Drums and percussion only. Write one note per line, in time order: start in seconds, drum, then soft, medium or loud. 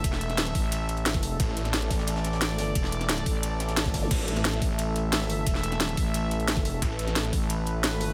0.04 kick loud
0.04 closed hi-hat loud
0.04 closed hi-hat medium
0.04 ride bell medium
0.12 snare medium
0.12 snare soft
0.21 closed hi-hat medium
0.21 ride bell medium
0.30 snare soft
0.30 closed hi-hat soft
0.38 snare loud
0.38 closed hi-hat medium
0.38 ride bell medium
0.47 snare soft
0.47 closed hi-hat soft
0.55 kick loud
0.55 closed hi-hat medium
0.55 open hi-hat medium
0.55 ride bell medium
0.63 snare soft
0.72 closed hi-hat loud
0.72 ride bell medium
0.89 closed hi-hat medium
0.89 ride bell medium
0.97 closed hi-hat soft
1.06 snare loud
1.06 closed hi-hat medium
1.06 ride bell medium
1.14 kick loud
1.14 snare soft
1.14 closed hi-hat soft
1.22 closed hi-hat medium
1.22 open hi-hat medium
1.22 ride bell medium
1.40 kick loud
1.40 closed hi-hat loud
1.40 ride bell medium
1.48 snare medium
1.57 closed hi-hat medium
1.57 ride bell medium
1.64 snare medium
1.64 snare soft
1.64 closed hi-hat soft
1.73 snare loud
1.73 closed hi-hat medium
1.73 ride bell medium
1.82 snare soft
1.82 closed hi-hat soft
1.91 kick loud
1.91 snare loud
1.91 closed hi-hat medium
1.91 open hi-hat medium
1.91 ride bell medium
1.99 snare loud
1.99 closed hi-hat medium
2.07 snare loud
2.07 closed hi-hat medium
2.07 closed hi-hat loud
2.07 ride bell medium
2.16 snare loud
2.16 closed hi-hat medium
2.24 snare loud
2.24 closed hi-hat medium
2.24 ride bell medium
2.33 snare loud
2.33 closed hi-hat medium
2.41 snare loud
2.41 closed hi-hat loud
2.41 closed hi-hat medium
2.41 ride bell medium
2.50 snare soft
2.58 snare loud
2.58 closed hi-hat medium
2.58 open hi-hat medium
2.58 ride bell medium
2.67 snare soft
2.75 kick loud
2.75 closed hi-hat medium
2.75 ride bell medium
2.84 snare soft
2.84 snare medium
2.92 closed hi-hat medium
2.92 ride bell medium
3.01 snare soft
3.01 closed hi-hat soft
3.09 snare loud
3.09 closed hi-hat loud
3.09 closed hi-hat medium
3.09 ride bell medium
3.18 snare soft
3.18 closed hi-hat soft
3.26 kick loud
3.26 closed hi-hat medium
3.26 open hi-hat medium
3.26 ride bell medium
3.34 snare soft
3.43 closed hi-hat medium
3.43 closed hi-hat loud
3.43 ride bell medium
3.60 snare loud
3.60 closed hi-hat medium
3.60 ride bell medium
3.69 snare loud
3.69 closed hi-hat medium
3.69 closed hi-hat soft
3.77 snare loud
3.77 closed hi-hat medium
3.77 closed hi-hat loud
3.77 ride bell medium
3.85 kick loud
3.85 snare medium
3.85 closed hi-hat medium
3.85 closed hi-hat soft
3.94 kick medium
3.94 snare loud
3.94 open hi-hat medium
3.94 ride bell medium
4.11 kick loud
4.11 closed hi-hat loud
4.11 closed hi-hat medium
4.11 crash medium
4.11 ride bell medium
4.19 snare medium
4.28 closed hi-hat medium
4.28 ride bell medium
4.36 snare soft
4.36 closed hi-hat soft
4.44 snare loud
4.44 closed hi-hat medium
4.44 closed hi-hat loud
4.44 ride bell medium
4.53 snare soft
4.53 closed hi-hat soft
4.62 kick loud
4.62 closed hi-hat medium
4.62 open hi-hat medium
4.62 ride bell medium
4.71 snare medium
4.78 closed hi-hat medium
4.78 closed hi-hat loud
4.78 ride bell medium
4.96 closed hi-hat medium
4.96 ride bell medium
5.12 snare loud
5.12 closed hi-hat loud
5.12 open hi-hat medium
5.12 ride bell medium
5.30 closed hi-hat medium
5.30 open hi-hat medium
5.30 ride bell medium
5.47 kick loud
5.47 closed hi-hat loud
5.47 closed hi-hat medium
5.47 ride bell medium
5.55 snare medium
5.55 snare soft
5.63 closed hi-hat medium
5.63 ride bell medium
5.72 snare soft
5.72 closed hi-hat soft
5.80 snare loud
5.80 closed hi-hat medium
5.80 ride bell medium
5.89 snare soft
5.89 closed hi-hat soft
5.97 kick loud
5.97 closed hi-hat medium
5.97 open hi-hat medium
5.97 ride bell medium
6.07 snare soft
6.14 closed hi-hat medium
6.14 ride bell medium
6.31 closed hi-hat medium
6.31 ride bell medium
6.40 closed hi-hat soft
6.48 snare loud
6.48 closed hi-hat medium
6.48 ride bell medium
6.56 kick loud
6.56 snare soft
6.56 closed hi-hat soft
6.65 closed hi-hat medium
6.65 open hi-hat medium
6.65 ride bell medium
6.82 kick loud
6.82 closed hi-hat medium
6.82 ride bell medium
6.91 snare medium
6.99 closed hi-hat medium
6.99 ride bell medium
7.07 snare soft
7.07 closed hi-hat soft
7.16 snare loud
7.16 closed hi-hat medium
7.16 ride bell medium
7.24 snare soft
7.24 closed hi-hat soft
7.33 kick loud
7.33 closed hi-hat medium
7.33 open hi-hat medium
7.33 ride bell medium
7.42 snare medium
7.49 closed hi-hat medium
7.49 closed hi-hat loud
7.49 ride bell medium
7.66 closed hi-hat medium
7.66 ride bell soft
7.84 snare loud
7.84 closed hi-hat medium
7.84 open hi-hat medium
7.84 ride bell medium
8.00 closed hi-hat medium
8.00 open hi-hat medium
8.00 ride bell medium